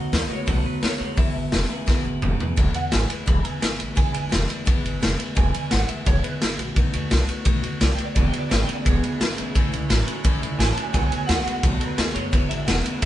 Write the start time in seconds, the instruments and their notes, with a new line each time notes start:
Already playing: steel-string acoustic guitar A3 B3 F#4, clean electric guitar D#5
0.12 upright bass D#2, clean electric guitar B2 G#3 D#5, steel-string acoustic guitar D#3 A3 B3 F#4, snare, open hi-hat
0.28 clean electric guitar B2 G#3, steel-string acoustic guitar A3 B3 F#4, muted upright bass stroke
0.32 clean electric guitar C#5
0.46 upright bass B1, steel-string acoustic guitar B2 D#3 A3 B3 F#4, clean electric guitar B2 F#3 B4, kick, open hi-hat
0.64 steel-string acoustic guitar A3 B3 F#4, clean electric guitar B4, muted upright bass stroke
0.81 upright bass D#2, clean electric guitar B2 G#3 C#5, steel-string acoustic guitar D#3 A3 B3 F#4, snare, open hi-hat
0.99 upright bass E2, clean electric guitar B2 G#3, steel-string acoustic guitar A3 B3 F#4
1.16 upright bass E1, steel-string acoustic guitar E2 B2 E3 G#3 B3 E4, clean electric guitar E2 B2 E5, kick, open hi-hat
1.34 upright bass G#1, steel-string acoustic guitar E3 G#3 B3 E4
1.52 upright bass E1, clean electric guitar E2 C#3, steel-string acoustic guitar E3 G#3 B3 E4, snare, open hi-hat
1.69 clean electric guitar E2 C#3, steel-string acoustic guitar E3 G#3 B3 E4, muted upright bass stroke
1.86 upright bass E1, steel-string acoustic guitar E2 B2 E3 G#3 B3 E4, clean electric guitar E2 B2, kick, snare
2.04 upright bass G#1, steel-string acoustic guitar E3 G#3 B3 E4
2.22 upright bass E1, clean electric guitar E2 C#3, steel-string acoustic guitar E3 G#3 B3 E4, mid tom
2.39 clean electric guitar E2 C#3, steel-string acoustic guitar E3 G#3 B3 E4, muted upright bass stroke, floor tom
2.56 upright bass E1, steel-string acoustic guitar E2 B2 E3 G#3 B3 E4, kick, ride
2.73 steel-string acoustic guitar E3 G#3 B3 E4, clean electric guitar F#5, ride
2.91 upright bass G#1, steel-string acoustic guitar E3 G#3 B3 E4, clean electric guitar G#5, snare, ride
3.08 steel-string acoustic guitar E3 G#3 B3 E4, ride
3.26 upright bass E1, steel-string acoustic guitar E2 B2 E3 G#3 B3 E4, clean electric guitar B5, kick, ride
3.43 steel-string acoustic guitar E3 G#3 B3 E4, clean electric guitar G#5, muted upright bass stroke, ride
3.60 upright bass G#1, steel-string acoustic guitar E3 G#3 B3 E4, snare, ride
3.78 upright bass A1, steel-string acoustic guitar E3 G#3 B3 E4, ride
3.95 upright bass C#2, steel-string acoustic guitar E2 B2 E3 G#3 B3 E4, clean electric guitar G#5, kick, ride
4.13 upright bass G#1, steel-string acoustic guitar E3 G#3 B3 E4, ride
4.29 upright bass E1, steel-string acoustic guitar E3 G#3 B3 E4, snare, ride
4.47 steel-string acoustic guitar E3 G#3 B3 E4, ride
4.65 upright bass E1, steel-string acoustic guitar E2 B2 E3 G#3 B3 E4, kick, ride
4.83 upright bass G#1, steel-string acoustic guitar E3 G#3 B3 E4, ride
5.00 upright bass E1, steel-string acoustic guitar E3 G#3 B3 E4, snare, ride
5.17 steel-string acoustic guitar E3 G#3 B3 E4, muted upright bass stroke, ride
5.35 upright bass E1, steel-string acoustic guitar E2 B2 E3 G#3 B3 E4, clean electric guitar G#5, kick, ride
5.53 steel-string acoustic guitar E3 G#3 B3 E4, ride
5.71 upright bass G#1, steel-string acoustic guitar E3 G#3 B3 E4, clean electric guitar F#5, snare, ride
5.88 steel-string acoustic guitar E3 G#3 B3 E4, clean electric guitar E5, ride
6.05 upright bass E1, steel-string acoustic guitar E2 B2 E3 G#3 B3 E4, clean electric guitar C#5, kick, ride
6.23 steel-string acoustic guitar E3 G#3 B3 E4, clean electric guitar B4, muted upright bass stroke, ride
6.41 upright bass G#1, steel-string acoustic guitar E3 G#3 B3 E4, clean electric guitar G#4, snare, ride
6.58 upright bass A#1, steel-string acoustic guitar E3 G#3 B3 E4, clean electric guitar F#4, ride
6.76 upright bass B1, steel-string acoustic guitar B2 D#3 A3 B3 F#4, clean electric guitar D#4, kick, ride
6.93 upright bass D#2, steel-string acoustic guitar A3 B3 F#4, ride
7.10 upright bass B1, steel-string acoustic guitar D#3 A3 B3 F#4, snare, ride
7.28 steel-string acoustic guitar A3 B3 F#4, muted upright bass stroke, ride
7.45 upright bass B1, steel-string acoustic guitar B2 D#3 A3 B3 F#4, kick, ride
7.62 upright bass D#2, steel-string acoustic guitar A3 B3 F#4, ride
7.80 upright bass B1, steel-string acoustic guitar D#3 A3 B3 F#4, clean electric guitar D5, snare, ride
7.93 steel-string acoustic guitar F#4, clean electric guitar G5
7.98 steel-string acoustic guitar A3 B3, muted upright bass stroke, ride
8.05 clean electric guitar D5
8.15 upright bass E1, steel-string acoustic guitar E2 B2 E3 G#3 B3 E4, clean electric guitar E2 B2 D5, kick, ride
8.27 clean electric guitar G5
8.32 steel-string acoustic guitar E3 G#3 B3 E4, muted upright bass stroke, ride
8.39 clean electric guitar D5
8.49 upright bass G#1, clean electric guitar E2 C#3 D5, steel-string acoustic guitar E3 G#3 B3 E4, snare, ride
8.62 clean electric guitar G5
8.66 clean electric guitar E2 C#3, steel-string acoustic guitar E3 G#3 B3 E4, muted upright bass stroke, ride
8.75 clean electric guitar D5
8.85 upright bass E1, steel-string acoustic guitar E2 B2 E3 G#3 B3 E4, clean electric guitar E2 B2 G#4, kick, ride
9.02 steel-string acoustic guitar E3 G#3 B3 E4, muted upright bass stroke, ride
9.20 upright bass G#1, clean electric guitar E2 C#3, steel-string acoustic guitar E3 G#3 B3 E4, snare, ride
9.37 upright bass B1, clean electric guitar E2 C#3, steel-string acoustic guitar E3 G#3 B3 E4, ride
9.55 upright bass A1, steel-string acoustic guitar A2 E3 A3 C#4 E4, clean electric guitar A2 E3, kick, ride
9.72 upright bass C#2, steel-string acoustic guitar A3 C#4 E4, ride
9.89 upright bass A1, clean electric guitar A2 F#3, steel-string acoustic guitar E3 A3 C#4 E4, snare, ride
10.06 clean electric guitar A2 F#3, steel-string acoustic guitar A3 C#4 E4, muted upright bass stroke, ride
10.24 upright bass A1, steel-string acoustic guitar A2 E3 A3 C#4 E4, clean electric guitar A2 E3, kick, ride
10.41 upright bass C#2, steel-string acoustic guitar A3 C#4 E4, ride
10.58 upright bass A1, clean electric guitar A2 F#3 G#5, steel-string acoustic guitar E3 A3 C#4 E4, snare, ride
10.71 clean electric guitar A5
10.75 clean electric guitar A2 F#3, steel-string acoustic guitar A3 C#4 E4, ride
10.82 clean electric guitar G#5
10.93 upright bass B1, steel-string acoustic guitar B2 D#3 A3 B3 F#4, clean electric guitar B2 F#3 G#5, kick, ride
11.05 clean electric guitar G#5
11.11 steel-string acoustic guitar A3 B3 F#4, muted upright bass stroke, ride
11.16 clean electric guitar G#5
11.27 upright bass D#2, clean electric guitar B2 G#3 F#5, steel-string acoustic guitar D#3 A3 B3 F#4, snare, ride
11.46 clean electric guitar B2 G#3, steel-string acoustic guitar A3 B3 F#4, muted upright bass stroke, ride
11.63 upright bass B1, steel-string acoustic guitar B2 D#3 A3 B3 F#4, clean electric guitar B2 F#3, kick, ride
11.80 steel-string acoustic guitar A3 B3 F#4, clean electric guitar B4, muted upright bass stroke, ride
11.97 upright bass D#2, clean electric guitar B2 G#3 G#4, steel-string acoustic guitar D#3 A3 B3 F#4, snare, ride
12.14 upright bass F#2, clean electric guitar B2 G#3 C#5, steel-string acoustic guitar A3 B3 F#4, ride
12.32 upright bass E1, steel-string acoustic guitar E2 B2 E3 G#3 B3 E4, clean electric guitar E2 B2, kick, ride
12.49 upright bass G#1, steel-string acoustic guitar E3 G#3 B3 E4, clean electric guitar E5, ride
12.66 upright bass E1, clean electric guitar E2 C#3 F#5, steel-string acoustic guitar E3 G#3 B3 E4, snare, ride
12.84 clean electric guitar E2 C#3 E5, steel-string acoustic guitar E3 G#3 B3 E4, muted upright bass stroke, ride
13.02 steel-string acoustic guitar E2 B2, ride